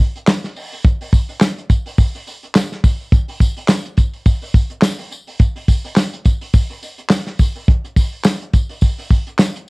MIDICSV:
0, 0, Header, 1, 2, 480
1, 0, Start_track
1, 0, Tempo, 570342
1, 708, Time_signature, 4, 2, 24, 8
1, 8155, End_track
2, 0, Start_track
2, 0, Title_t, "Drums"
2, 0, Note_on_c, 9, 44, 63
2, 0, Note_on_c, 9, 46, 64
2, 0, Note_on_c, 9, 54, 30
2, 82, Note_off_c, 9, 44, 0
2, 83, Note_off_c, 9, 46, 0
2, 84, Note_off_c, 9, 54, 0
2, 132, Note_on_c, 9, 46, 53
2, 133, Note_on_c, 9, 44, 55
2, 216, Note_off_c, 9, 46, 0
2, 217, Note_off_c, 9, 44, 0
2, 229, Note_on_c, 9, 39, 103
2, 232, Note_on_c, 9, 54, 77
2, 234, Note_on_c, 9, 38, 127
2, 235, Note_on_c, 9, 44, 66
2, 238, Note_on_c, 9, 46, 90
2, 313, Note_off_c, 9, 39, 0
2, 316, Note_off_c, 9, 54, 0
2, 319, Note_off_c, 9, 38, 0
2, 319, Note_off_c, 9, 44, 0
2, 322, Note_off_c, 9, 46, 0
2, 372, Note_on_c, 9, 44, 69
2, 373, Note_on_c, 9, 38, 40
2, 373, Note_on_c, 9, 46, 38
2, 456, Note_off_c, 9, 44, 0
2, 457, Note_off_c, 9, 38, 0
2, 457, Note_off_c, 9, 46, 0
2, 474, Note_on_c, 9, 54, 54
2, 476, Note_on_c, 9, 44, 68
2, 476, Note_on_c, 9, 46, 71
2, 558, Note_off_c, 9, 54, 0
2, 560, Note_off_c, 9, 44, 0
2, 560, Note_off_c, 9, 46, 0
2, 610, Note_on_c, 9, 44, 62
2, 612, Note_on_c, 9, 46, 49
2, 694, Note_off_c, 9, 44, 0
2, 696, Note_off_c, 9, 46, 0
2, 711, Note_on_c, 9, 54, 27
2, 712, Note_on_c, 9, 36, 124
2, 714, Note_on_c, 9, 44, 63
2, 714, Note_on_c, 9, 46, 73
2, 795, Note_off_c, 9, 54, 0
2, 796, Note_off_c, 9, 36, 0
2, 798, Note_off_c, 9, 44, 0
2, 798, Note_off_c, 9, 46, 0
2, 849, Note_on_c, 9, 44, 68
2, 851, Note_on_c, 9, 46, 41
2, 933, Note_off_c, 9, 44, 0
2, 935, Note_off_c, 9, 46, 0
2, 950, Note_on_c, 9, 36, 102
2, 953, Note_on_c, 9, 44, 63
2, 954, Note_on_c, 9, 46, 77
2, 958, Note_on_c, 9, 54, 57
2, 1034, Note_off_c, 9, 36, 0
2, 1037, Note_off_c, 9, 44, 0
2, 1038, Note_off_c, 9, 46, 0
2, 1042, Note_off_c, 9, 54, 0
2, 1085, Note_on_c, 9, 44, 67
2, 1085, Note_on_c, 9, 46, 45
2, 1169, Note_off_c, 9, 44, 0
2, 1169, Note_off_c, 9, 46, 0
2, 1184, Note_on_c, 9, 39, 104
2, 1190, Note_on_c, 9, 38, 123
2, 1190, Note_on_c, 9, 44, 73
2, 1193, Note_on_c, 9, 46, 87
2, 1195, Note_on_c, 9, 54, 81
2, 1268, Note_off_c, 9, 39, 0
2, 1274, Note_off_c, 9, 38, 0
2, 1275, Note_off_c, 9, 44, 0
2, 1277, Note_off_c, 9, 46, 0
2, 1279, Note_off_c, 9, 54, 0
2, 1326, Note_on_c, 9, 44, 65
2, 1326, Note_on_c, 9, 46, 34
2, 1410, Note_off_c, 9, 46, 0
2, 1411, Note_off_c, 9, 44, 0
2, 1428, Note_on_c, 9, 46, 75
2, 1430, Note_on_c, 9, 36, 88
2, 1431, Note_on_c, 9, 44, 68
2, 1434, Note_on_c, 9, 54, 51
2, 1512, Note_off_c, 9, 46, 0
2, 1514, Note_off_c, 9, 36, 0
2, 1515, Note_off_c, 9, 44, 0
2, 1518, Note_off_c, 9, 54, 0
2, 1565, Note_on_c, 9, 44, 65
2, 1566, Note_on_c, 9, 46, 52
2, 1649, Note_off_c, 9, 44, 0
2, 1650, Note_off_c, 9, 46, 0
2, 1666, Note_on_c, 9, 54, 49
2, 1669, Note_on_c, 9, 36, 99
2, 1670, Note_on_c, 9, 44, 59
2, 1671, Note_on_c, 9, 46, 93
2, 1750, Note_off_c, 9, 54, 0
2, 1753, Note_off_c, 9, 36, 0
2, 1754, Note_off_c, 9, 44, 0
2, 1755, Note_off_c, 9, 46, 0
2, 1807, Note_on_c, 9, 44, 67
2, 1808, Note_on_c, 9, 46, 31
2, 1891, Note_off_c, 9, 44, 0
2, 1892, Note_off_c, 9, 46, 0
2, 1910, Note_on_c, 9, 44, 61
2, 1911, Note_on_c, 9, 46, 72
2, 1913, Note_on_c, 9, 54, 31
2, 1994, Note_off_c, 9, 44, 0
2, 1995, Note_off_c, 9, 46, 0
2, 1997, Note_off_c, 9, 54, 0
2, 2044, Note_on_c, 9, 44, 58
2, 2044, Note_on_c, 9, 46, 56
2, 2128, Note_off_c, 9, 44, 0
2, 2128, Note_off_c, 9, 46, 0
2, 2143, Note_on_c, 9, 39, 96
2, 2148, Note_on_c, 9, 38, 127
2, 2149, Note_on_c, 9, 44, 77
2, 2149, Note_on_c, 9, 54, 78
2, 2152, Note_on_c, 9, 46, 100
2, 2227, Note_off_c, 9, 39, 0
2, 2233, Note_off_c, 9, 38, 0
2, 2233, Note_off_c, 9, 44, 0
2, 2233, Note_off_c, 9, 54, 0
2, 2236, Note_off_c, 9, 46, 0
2, 2286, Note_on_c, 9, 44, 69
2, 2287, Note_on_c, 9, 38, 39
2, 2370, Note_off_c, 9, 44, 0
2, 2371, Note_off_c, 9, 38, 0
2, 2388, Note_on_c, 9, 36, 102
2, 2388, Note_on_c, 9, 54, 58
2, 2390, Note_on_c, 9, 44, 68
2, 2390, Note_on_c, 9, 46, 68
2, 2472, Note_off_c, 9, 36, 0
2, 2472, Note_off_c, 9, 54, 0
2, 2474, Note_off_c, 9, 44, 0
2, 2474, Note_off_c, 9, 46, 0
2, 2525, Note_on_c, 9, 46, 49
2, 2609, Note_off_c, 9, 46, 0
2, 2626, Note_on_c, 9, 44, 64
2, 2626, Note_on_c, 9, 46, 73
2, 2627, Note_on_c, 9, 36, 122
2, 2628, Note_on_c, 9, 54, 33
2, 2710, Note_off_c, 9, 44, 0
2, 2710, Note_off_c, 9, 46, 0
2, 2712, Note_off_c, 9, 36, 0
2, 2713, Note_off_c, 9, 54, 0
2, 2763, Note_on_c, 9, 44, 74
2, 2764, Note_on_c, 9, 46, 35
2, 2847, Note_off_c, 9, 44, 0
2, 2848, Note_off_c, 9, 46, 0
2, 2865, Note_on_c, 9, 36, 95
2, 2867, Note_on_c, 9, 44, 63
2, 2868, Note_on_c, 9, 46, 75
2, 2873, Note_on_c, 9, 54, 57
2, 2950, Note_off_c, 9, 36, 0
2, 2951, Note_off_c, 9, 44, 0
2, 2952, Note_off_c, 9, 46, 0
2, 2957, Note_off_c, 9, 54, 0
2, 3003, Note_on_c, 9, 44, 73
2, 3003, Note_on_c, 9, 46, 49
2, 3087, Note_off_c, 9, 44, 0
2, 3087, Note_off_c, 9, 46, 0
2, 3098, Note_on_c, 9, 39, 91
2, 3104, Note_on_c, 9, 38, 127
2, 3104, Note_on_c, 9, 44, 67
2, 3104, Note_on_c, 9, 54, 92
2, 3107, Note_on_c, 9, 46, 105
2, 3182, Note_off_c, 9, 39, 0
2, 3188, Note_off_c, 9, 38, 0
2, 3188, Note_off_c, 9, 44, 0
2, 3188, Note_off_c, 9, 54, 0
2, 3191, Note_off_c, 9, 46, 0
2, 3238, Note_on_c, 9, 44, 65
2, 3322, Note_off_c, 9, 44, 0
2, 3341, Note_on_c, 9, 46, 83
2, 3343, Note_on_c, 9, 44, 70
2, 3347, Note_on_c, 9, 36, 88
2, 3352, Note_on_c, 9, 54, 48
2, 3425, Note_off_c, 9, 46, 0
2, 3427, Note_off_c, 9, 44, 0
2, 3431, Note_off_c, 9, 36, 0
2, 3436, Note_off_c, 9, 54, 0
2, 3480, Note_on_c, 9, 46, 55
2, 3564, Note_off_c, 9, 46, 0
2, 3581, Note_on_c, 9, 44, 61
2, 3582, Note_on_c, 9, 46, 90
2, 3584, Note_on_c, 9, 36, 95
2, 3586, Note_on_c, 9, 54, 53
2, 3665, Note_off_c, 9, 44, 0
2, 3666, Note_off_c, 9, 46, 0
2, 3668, Note_off_c, 9, 36, 0
2, 3670, Note_off_c, 9, 54, 0
2, 3717, Note_on_c, 9, 44, 64
2, 3718, Note_on_c, 9, 46, 33
2, 3801, Note_off_c, 9, 44, 0
2, 3802, Note_off_c, 9, 46, 0
2, 3819, Note_on_c, 9, 44, 55
2, 3820, Note_on_c, 9, 46, 65
2, 3822, Note_on_c, 9, 36, 101
2, 3832, Note_on_c, 9, 54, 32
2, 3903, Note_off_c, 9, 44, 0
2, 3904, Note_off_c, 9, 46, 0
2, 3906, Note_off_c, 9, 36, 0
2, 3917, Note_off_c, 9, 54, 0
2, 3954, Note_on_c, 9, 44, 62
2, 3954, Note_on_c, 9, 46, 57
2, 4038, Note_off_c, 9, 46, 0
2, 4039, Note_off_c, 9, 44, 0
2, 4053, Note_on_c, 9, 39, 97
2, 4058, Note_on_c, 9, 38, 116
2, 4059, Note_on_c, 9, 44, 74
2, 4062, Note_on_c, 9, 46, 96
2, 4069, Note_on_c, 9, 54, 89
2, 4137, Note_off_c, 9, 39, 0
2, 4142, Note_off_c, 9, 38, 0
2, 4143, Note_off_c, 9, 44, 0
2, 4146, Note_off_c, 9, 46, 0
2, 4153, Note_off_c, 9, 54, 0
2, 4193, Note_on_c, 9, 44, 73
2, 4195, Note_on_c, 9, 46, 35
2, 4278, Note_off_c, 9, 44, 0
2, 4279, Note_off_c, 9, 46, 0
2, 4300, Note_on_c, 9, 44, 75
2, 4300, Note_on_c, 9, 46, 66
2, 4312, Note_on_c, 9, 54, 59
2, 4384, Note_off_c, 9, 44, 0
2, 4384, Note_off_c, 9, 46, 0
2, 4396, Note_off_c, 9, 54, 0
2, 4438, Note_on_c, 9, 44, 60
2, 4439, Note_on_c, 9, 46, 48
2, 4522, Note_off_c, 9, 44, 0
2, 4524, Note_off_c, 9, 46, 0
2, 4539, Note_on_c, 9, 44, 71
2, 4539, Note_on_c, 9, 46, 69
2, 4544, Note_on_c, 9, 36, 105
2, 4546, Note_on_c, 9, 54, 31
2, 4624, Note_off_c, 9, 44, 0
2, 4624, Note_off_c, 9, 46, 0
2, 4628, Note_off_c, 9, 36, 0
2, 4630, Note_off_c, 9, 54, 0
2, 4677, Note_on_c, 9, 44, 69
2, 4678, Note_on_c, 9, 46, 40
2, 4761, Note_off_c, 9, 44, 0
2, 4763, Note_off_c, 9, 46, 0
2, 4782, Note_on_c, 9, 36, 89
2, 4782, Note_on_c, 9, 44, 70
2, 4783, Note_on_c, 9, 46, 79
2, 4786, Note_on_c, 9, 54, 60
2, 4866, Note_off_c, 9, 44, 0
2, 4867, Note_off_c, 9, 36, 0
2, 4867, Note_off_c, 9, 46, 0
2, 4870, Note_off_c, 9, 54, 0
2, 4918, Note_on_c, 9, 44, 67
2, 4918, Note_on_c, 9, 46, 50
2, 5002, Note_off_c, 9, 44, 0
2, 5003, Note_off_c, 9, 46, 0
2, 5015, Note_on_c, 9, 39, 94
2, 5021, Note_on_c, 9, 38, 108
2, 5021, Note_on_c, 9, 44, 70
2, 5021, Note_on_c, 9, 54, 89
2, 5024, Note_on_c, 9, 46, 93
2, 5100, Note_off_c, 9, 39, 0
2, 5105, Note_off_c, 9, 38, 0
2, 5105, Note_off_c, 9, 54, 0
2, 5106, Note_off_c, 9, 44, 0
2, 5108, Note_off_c, 9, 46, 0
2, 5155, Note_on_c, 9, 46, 38
2, 5156, Note_on_c, 9, 44, 73
2, 5240, Note_off_c, 9, 44, 0
2, 5240, Note_off_c, 9, 46, 0
2, 5258, Note_on_c, 9, 46, 84
2, 5261, Note_on_c, 9, 44, 70
2, 5264, Note_on_c, 9, 54, 54
2, 5265, Note_on_c, 9, 36, 87
2, 5342, Note_off_c, 9, 46, 0
2, 5345, Note_off_c, 9, 44, 0
2, 5348, Note_off_c, 9, 54, 0
2, 5349, Note_off_c, 9, 36, 0
2, 5397, Note_on_c, 9, 44, 69
2, 5398, Note_on_c, 9, 46, 56
2, 5481, Note_off_c, 9, 44, 0
2, 5482, Note_off_c, 9, 46, 0
2, 5500, Note_on_c, 9, 44, 61
2, 5500, Note_on_c, 9, 54, 50
2, 5501, Note_on_c, 9, 46, 98
2, 5503, Note_on_c, 9, 36, 105
2, 5584, Note_off_c, 9, 44, 0
2, 5584, Note_off_c, 9, 54, 0
2, 5585, Note_off_c, 9, 46, 0
2, 5587, Note_off_c, 9, 36, 0
2, 5638, Note_on_c, 9, 44, 64
2, 5639, Note_on_c, 9, 46, 36
2, 5722, Note_off_c, 9, 44, 0
2, 5723, Note_off_c, 9, 46, 0
2, 5744, Note_on_c, 9, 44, 69
2, 5745, Note_on_c, 9, 46, 65
2, 5747, Note_on_c, 9, 54, 34
2, 5829, Note_off_c, 9, 44, 0
2, 5829, Note_off_c, 9, 46, 0
2, 5831, Note_off_c, 9, 54, 0
2, 5875, Note_on_c, 9, 46, 55
2, 5876, Note_on_c, 9, 44, 65
2, 5959, Note_off_c, 9, 46, 0
2, 5960, Note_off_c, 9, 44, 0
2, 5972, Note_on_c, 9, 39, 107
2, 5977, Note_on_c, 9, 38, 127
2, 5978, Note_on_c, 9, 44, 76
2, 5981, Note_on_c, 9, 46, 95
2, 5982, Note_on_c, 9, 54, 81
2, 6056, Note_off_c, 9, 39, 0
2, 6062, Note_off_c, 9, 38, 0
2, 6062, Note_off_c, 9, 44, 0
2, 6065, Note_off_c, 9, 46, 0
2, 6067, Note_off_c, 9, 54, 0
2, 6115, Note_on_c, 9, 44, 66
2, 6116, Note_on_c, 9, 38, 42
2, 6116, Note_on_c, 9, 46, 39
2, 6199, Note_off_c, 9, 44, 0
2, 6201, Note_off_c, 9, 38, 0
2, 6201, Note_off_c, 9, 46, 0
2, 6220, Note_on_c, 9, 54, 55
2, 6223, Note_on_c, 9, 44, 74
2, 6223, Note_on_c, 9, 46, 76
2, 6224, Note_on_c, 9, 36, 92
2, 6304, Note_off_c, 9, 54, 0
2, 6307, Note_off_c, 9, 44, 0
2, 6307, Note_off_c, 9, 46, 0
2, 6308, Note_off_c, 9, 36, 0
2, 6358, Note_on_c, 9, 44, 60
2, 6359, Note_on_c, 9, 46, 51
2, 6442, Note_off_c, 9, 44, 0
2, 6444, Note_off_c, 9, 46, 0
2, 6465, Note_on_c, 9, 36, 127
2, 6466, Note_on_c, 9, 44, 64
2, 6466, Note_on_c, 9, 46, 74
2, 6550, Note_off_c, 9, 36, 0
2, 6551, Note_off_c, 9, 44, 0
2, 6551, Note_off_c, 9, 46, 0
2, 6601, Note_on_c, 9, 44, 67
2, 6685, Note_off_c, 9, 44, 0
2, 6704, Note_on_c, 9, 36, 93
2, 6704, Note_on_c, 9, 44, 68
2, 6705, Note_on_c, 9, 46, 80
2, 6706, Note_on_c, 9, 54, 56
2, 6788, Note_off_c, 9, 36, 0
2, 6788, Note_off_c, 9, 44, 0
2, 6789, Note_off_c, 9, 46, 0
2, 6790, Note_off_c, 9, 54, 0
2, 6841, Note_on_c, 9, 46, 48
2, 6925, Note_off_c, 9, 46, 0
2, 6939, Note_on_c, 9, 54, 93
2, 6940, Note_on_c, 9, 39, 93
2, 6945, Note_on_c, 9, 38, 123
2, 6946, Note_on_c, 9, 44, 74
2, 6948, Note_on_c, 9, 46, 104
2, 7023, Note_off_c, 9, 54, 0
2, 7024, Note_off_c, 9, 39, 0
2, 7029, Note_off_c, 9, 38, 0
2, 7030, Note_off_c, 9, 44, 0
2, 7032, Note_off_c, 9, 46, 0
2, 7081, Note_on_c, 9, 46, 38
2, 7082, Note_on_c, 9, 44, 62
2, 7165, Note_off_c, 9, 46, 0
2, 7166, Note_off_c, 9, 44, 0
2, 7184, Note_on_c, 9, 46, 86
2, 7184, Note_on_c, 9, 54, 47
2, 7186, Note_on_c, 9, 36, 85
2, 7186, Note_on_c, 9, 44, 74
2, 7268, Note_off_c, 9, 46, 0
2, 7268, Note_off_c, 9, 54, 0
2, 7270, Note_off_c, 9, 36, 0
2, 7270, Note_off_c, 9, 44, 0
2, 7318, Note_on_c, 9, 44, 67
2, 7318, Note_on_c, 9, 46, 51
2, 7402, Note_off_c, 9, 44, 0
2, 7402, Note_off_c, 9, 46, 0
2, 7417, Note_on_c, 9, 54, 48
2, 7425, Note_on_c, 9, 36, 91
2, 7426, Note_on_c, 9, 44, 63
2, 7427, Note_on_c, 9, 46, 83
2, 7502, Note_off_c, 9, 54, 0
2, 7509, Note_off_c, 9, 36, 0
2, 7510, Note_off_c, 9, 44, 0
2, 7511, Note_off_c, 9, 46, 0
2, 7561, Note_on_c, 9, 44, 70
2, 7562, Note_on_c, 9, 46, 36
2, 7646, Note_off_c, 9, 44, 0
2, 7646, Note_off_c, 9, 46, 0
2, 7664, Note_on_c, 9, 36, 91
2, 7666, Note_on_c, 9, 44, 59
2, 7667, Note_on_c, 9, 46, 68
2, 7669, Note_on_c, 9, 54, 32
2, 7748, Note_off_c, 9, 36, 0
2, 7750, Note_off_c, 9, 44, 0
2, 7751, Note_off_c, 9, 46, 0
2, 7753, Note_off_c, 9, 54, 0
2, 7800, Note_on_c, 9, 44, 59
2, 7800, Note_on_c, 9, 46, 59
2, 7884, Note_off_c, 9, 46, 0
2, 7885, Note_off_c, 9, 44, 0
2, 7899, Note_on_c, 9, 39, 99
2, 7904, Note_on_c, 9, 38, 115
2, 7904, Note_on_c, 9, 44, 71
2, 7906, Note_on_c, 9, 54, 86
2, 7908, Note_on_c, 9, 46, 98
2, 7983, Note_off_c, 9, 39, 0
2, 7988, Note_off_c, 9, 38, 0
2, 7989, Note_off_c, 9, 44, 0
2, 7990, Note_off_c, 9, 54, 0
2, 7992, Note_off_c, 9, 46, 0
2, 8040, Note_on_c, 9, 44, 67
2, 8124, Note_off_c, 9, 44, 0
2, 8155, End_track
0, 0, End_of_file